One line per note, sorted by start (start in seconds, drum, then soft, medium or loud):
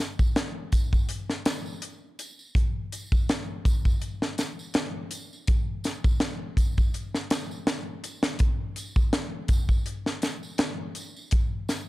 0.00 snare soft
0.19 kick medium
0.19 tambourine medium
0.36 snare loud
0.36 closed hi-hat medium
0.36 tambourine soft
0.72 kick medium
0.72 closed hi-hat medium
0.72 tambourine medium
0.93 kick medium
0.93 tambourine soft
1.09 closed hi-hat medium
1.09 tambourine soft
1.30 snare soft
1.45 snare loud
1.45 closed hi-hat medium
1.45 tambourine loud
1.66 tambourine soft
1.82 closed hi-hat medium
1.82 tambourine soft
2.19 closed hi-hat medium
2.19 tambourine medium
2.39 tambourine soft
2.55 kick loud
2.55 closed hi-hat medium
2.55 tambourine soft
2.92 closed hi-hat medium
2.92 tambourine loud
3.12 kick medium
3.12 tambourine medium
3.29 snare loud
3.29 closed hi-hat medium
3.29 tambourine soft
3.65 kick medium
3.65 closed hi-hat medium
3.65 tambourine loud
3.85 kick medium
3.85 tambourine medium
4.02 closed hi-hat medium
4.02 tambourine soft
4.22 snare soft
4.38 snare soft
4.38 closed hi-hat medium
4.38 tambourine medium
4.59 tambourine medium
4.74 snare loud
4.74 closed hi-hat medium
5.11 closed hi-hat medium
5.11 tambourine medium
5.33 tambourine soft
5.47 kick loud
5.47 closed hi-hat medium
5.47 tambourine soft
5.84 snare soft
5.84 closed hi-hat medium
5.84 tambourine medium
6.04 kick medium
6.04 tambourine medium
6.20 snare loud
6.20 closed hi-hat medium
6.20 tambourine soft
6.57 kick medium
6.57 closed hi-hat medium
6.57 tambourine medium
6.77 kick medium
6.77 tambourine medium
6.94 closed hi-hat medium
6.94 tambourine soft
7.14 snare soft
7.30 snare medium
7.30 closed hi-hat medium
7.30 tambourine medium
7.51 tambourine medium
7.67 snare loud
7.67 closed hi-hat medium
7.67 tambourine soft
8.04 closed hi-hat medium
8.04 tambourine medium
8.23 snare medium
8.23 closed hi-hat medium
8.23 tambourine soft
8.39 kick loud
8.39 closed hi-hat medium
8.39 tambourine soft
8.76 closed hi-hat medium
8.76 tambourine medium
8.96 kick medium
8.96 tambourine soft
9.13 snare loud
9.13 closed hi-hat medium
9.13 tambourine soft
9.48 kick loud
9.48 closed hi-hat medium
9.48 tambourine medium
9.69 kick medium
9.69 tambourine soft
9.86 closed hi-hat medium
9.86 tambourine soft
10.06 snare soft
10.22 snare medium
10.22 closed hi-hat medium
10.22 tambourine loud
10.43 tambourine soft
10.58 snare loud
10.58 closed hi-hat medium
10.58 tambourine soft
10.95 closed hi-hat medium
10.95 tambourine medium
11.16 tambourine soft
11.31 kick loud
11.31 closed hi-hat medium
11.31 tambourine soft
11.69 snare soft
11.69 closed hi-hat medium
11.69 tambourine medium